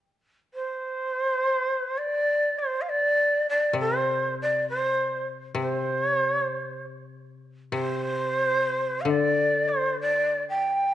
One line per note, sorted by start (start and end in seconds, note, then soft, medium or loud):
0.54 1.99 C5 medium
1.98 2.60 D5 medium
2.58 2.83 C5 medium
2.81 2.90 F5 medium
2.89 3.47 D5 medium
3.49 3.75 D5 medium
3.73 5.53 C3 medium
3.80 4.35 C5 medium
4.42 4.68 D5 medium
4.69 5.28 C5 medium
5.55 7.71 C3 medium
5.60 6.04 C5 medium
6.04 6.16 C#5 medium
6.16 6.29 C5 medium
6.29 6.41 C#5 medium
6.41 6.84 C5 medium
7.72 9.07 C3 medium
7.72 9.02 C5 medium
9.01 9.11 F5 medium
9.05 10.94 D3 soft
9.05 9.70 D5 medium
9.68 9.99 C5 medium
10.01 10.44 D5 medium
10.49 10.94 G5 loud